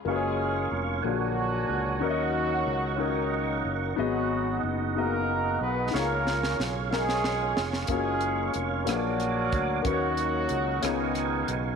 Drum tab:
HH |------------|------------|------------|------------|
SD |------------|------------|------------|o-ooo-ooo-oo|
BD |------------|------------|------------|------------|

HH |x-x-x-x-x-x-|x-x-x-x-x-x-|
SD |------r-r---|------r-r---|
BD |o---------o-|o-----------|